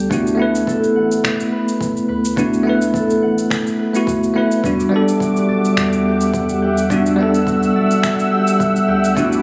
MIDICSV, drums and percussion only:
0, 0, Header, 1, 2, 480
1, 0, Start_track
1, 0, Key_signature, 1, "minor"
1, 0, Tempo, 566038
1, 96, Time_signature, 4, 2, 24, 8
1, 7990, End_track
2, 0, Start_track
2, 0, Title_t, "Drums"
2, 91, Note_on_c, 9, 36, 111
2, 102, Note_on_c, 9, 82, 54
2, 176, Note_off_c, 9, 36, 0
2, 187, Note_off_c, 9, 82, 0
2, 229, Note_on_c, 9, 82, 36
2, 314, Note_off_c, 9, 82, 0
2, 468, Note_on_c, 9, 82, 63
2, 553, Note_off_c, 9, 82, 0
2, 571, Note_on_c, 9, 36, 98
2, 584, Note_on_c, 9, 82, 56
2, 656, Note_off_c, 9, 36, 0
2, 669, Note_off_c, 9, 82, 0
2, 710, Note_on_c, 9, 82, 32
2, 794, Note_off_c, 9, 82, 0
2, 948, Note_on_c, 9, 82, 68
2, 1033, Note_off_c, 9, 82, 0
2, 1052, Note_on_c, 9, 36, 107
2, 1057, Note_on_c, 9, 26, 79
2, 1064, Note_on_c, 9, 82, 60
2, 1136, Note_off_c, 9, 36, 0
2, 1141, Note_off_c, 9, 26, 0
2, 1149, Note_off_c, 9, 82, 0
2, 1190, Note_on_c, 9, 82, 34
2, 1275, Note_off_c, 9, 82, 0
2, 1429, Note_on_c, 9, 82, 64
2, 1514, Note_off_c, 9, 82, 0
2, 1532, Note_on_c, 9, 36, 105
2, 1545, Note_on_c, 9, 82, 55
2, 1617, Note_off_c, 9, 36, 0
2, 1630, Note_off_c, 9, 82, 0
2, 1671, Note_on_c, 9, 82, 30
2, 1755, Note_off_c, 9, 82, 0
2, 1907, Note_on_c, 9, 82, 64
2, 1992, Note_off_c, 9, 82, 0
2, 2011, Note_on_c, 9, 36, 107
2, 2021, Note_on_c, 9, 82, 52
2, 2096, Note_off_c, 9, 36, 0
2, 2106, Note_off_c, 9, 82, 0
2, 2150, Note_on_c, 9, 82, 34
2, 2234, Note_off_c, 9, 82, 0
2, 2389, Note_on_c, 9, 82, 66
2, 2474, Note_off_c, 9, 82, 0
2, 2492, Note_on_c, 9, 36, 108
2, 2504, Note_on_c, 9, 82, 54
2, 2577, Note_off_c, 9, 36, 0
2, 2589, Note_off_c, 9, 82, 0
2, 2631, Note_on_c, 9, 82, 33
2, 2716, Note_off_c, 9, 82, 0
2, 2870, Note_on_c, 9, 82, 67
2, 2955, Note_off_c, 9, 82, 0
2, 2973, Note_on_c, 9, 36, 103
2, 2979, Note_on_c, 9, 26, 77
2, 2986, Note_on_c, 9, 82, 54
2, 3057, Note_off_c, 9, 36, 0
2, 3064, Note_off_c, 9, 26, 0
2, 3071, Note_off_c, 9, 82, 0
2, 3112, Note_on_c, 9, 82, 33
2, 3197, Note_off_c, 9, 82, 0
2, 3349, Note_on_c, 9, 82, 66
2, 3433, Note_off_c, 9, 82, 0
2, 3452, Note_on_c, 9, 36, 100
2, 3463, Note_on_c, 9, 82, 55
2, 3537, Note_off_c, 9, 36, 0
2, 3548, Note_off_c, 9, 82, 0
2, 3591, Note_on_c, 9, 82, 31
2, 3676, Note_off_c, 9, 82, 0
2, 3830, Note_on_c, 9, 82, 64
2, 3915, Note_off_c, 9, 82, 0
2, 3933, Note_on_c, 9, 36, 98
2, 3944, Note_on_c, 9, 82, 46
2, 4018, Note_off_c, 9, 36, 0
2, 4028, Note_off_c, 9, 82, 0
2, 4070, Note_on_c, 9, 82, 32
2, 4155, Note_off_c, 9, 82, 0
2, 4311, Note_on_c, 9, 82, 66
2, 4396, Note_off_c, 9, 82, 0
2, 4413, Note_on_c, 9, 36, 100
2, 4426, Note_on_c, 9, 82, 52
2, 4497, Note_off_c, 9, 36, 0
2, 4510, Note_off_c, 9, 82, 0
2, 4550, Note_on_c, 9, 82, 33
2, 4635, Note_off_c, 9, 82, 0
2, 4791, Note_on_c, 9, 82, 60
2, 4876, Note_off_c, 9, 82, 0
2, 4893, Note_on_c, 9, 36, 102
2, 4894, Note_on_c, 9, 26, 73
2, 4901, Note_on_c, 9, 82, 53
2, 4977, Note_off_c, 9, 36, 0
2, 4979, Note_off_c, 9, 26, 0
2, 4986, Note_off_c, 9, 82, 0
2, 5027, Note_on_c, 9, 82, 33
2, 5112, Note_off_c, 9, 82, 0
2, 5266, Note_on_c, 9, 82, 66
2, 5351, Note_off_c, 9, 82, 0
2, 5373, Note_on_c, 9, 36, 103
2, 5380, Note_on_c, 9, 82, 56
2, 5458, Note_off_c, 9, 36, 0
2, 5465, Note_off_c, 9, 82, 0
2, 5505, Note_on_c, 9, 82, 30
2, 5590, Note_off_c, 9, 82, 0
2, 5746, Note_on_c, 9, 82, 61
2, 5831, Note_off_c, 9, 82, 0
2, 5853, Note_on_c, 9, 36, 101
2, 5860, Note_on_c, 9, 82, 49
2, 5938, Note_off_c, 9, 36, 0
2, 5945, Note_off_c, 9, 82, 0
2, 5988, Note_on_c, 9, 82, 31
2, 6073, Note_off_c, 9, 82, 0
2, 6230, Note_on_c, 9, 82, 60
2, 6315, Note_off_c, 9, 82, 0
2, 6333, Note_on_c, 9, 36, 99
2, 6342, Note_on_c, 9, 82, 51
2, 6418, Note_off_c, 9, 36, 0
2, 6427, Note_off_c, 9, 82, 0
2, 6470, Note_on_c, 9, 82, 32
2, 6554, Note_off_c, 9, 82, 0
2, 6708, Note_on_c, 9, 82, 61
2, 6793, Note_off_c, 9, 82, 0
2, 6813, Note_on_c, 9, 26, 70
2, 6813, Note_on_c, 9, 36, 101
2, 6820, Note_on_c, 9, 82, 57
2, 6898, Note_off_c, 9, 26, 0
2, 6898, Note_off_c, 9, 36, 0
2, 6905, Note_off_c, 9, 82, 0
2, 6949, Note_on_c, 9, 82, 31
2, 7034, Note_off_c, 9, 82, 0
2, 7186, Note_on_c, 9, 82, 64
2, 7271, Note_off_c, 9, 82, 0
2, 7293, Note_on_c, 9, 36, 100
2, 7300, Note_on_c, 9, 82, 52
2, 7378, Note_off_c, 9, 36, 0
2, 7385, Note_off_c, 9, 82, 0
2, 7429, Note_on_c, 9, 82, 30
2, 7514, Note_off_c, 9, 82, 0
2, 7668, Note_on_c, 9, 82, 63
2, 7753, Note_off_c, 9, 82, 0
2, 7774, Note_on_c, 9, 36, 101
2, 7780, Note_on_c, 9, 82, 49
2, 7858, Note_off_c, 9, 36, 0
2, 7865, Note_off_c, 9, 82, 0
2, 7908, Note_on_c, 9, 82, 31
2, 7990, Note_off_c, 9, 82, 0
2, 7990, End_track
0, 0, End_of_file